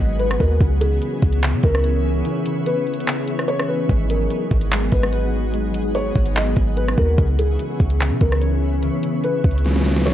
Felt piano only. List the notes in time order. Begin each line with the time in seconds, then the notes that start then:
Already playing: D#5
0.19 B4
0.40 A#4
0.81 G#4
1.64 A#4
2.66 B4
3.48 C#5
3.69 B4
4.10 A#4
4.93 B4
5.95 C#5
6.36 D#5
6.77 B4
6.97 A#4
7.39 G#4
8.21 A#4
9.24 B4
10.06 C#5